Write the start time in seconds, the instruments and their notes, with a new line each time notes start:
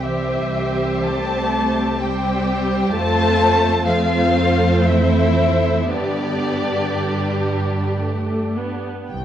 Already playing: double bass section C2
0.02 cello section E3, viola section G3 C4, violin section G4 C5 E5
1.05 cello section A3, violin section A5
2.01 viola section G3 C4, cello section G3, violin section G4 C5 G5
2.93 double bass section F2, viola section A3 C4, cello section A3, violin section F4 C5 A5
3.84 cello section F3, viola section A3 C4, violin section F4 C5 F5
4.85 cello section E3, violin section E4 E5
5.87 double bass section G2, cello section D3, viola section G3 B3, violin section D4 G4 D5
6.95 viola section G3
8.04 viola section A3
8.57 viola section B3
9.09 double bass section C2, cello section C2, violin section G5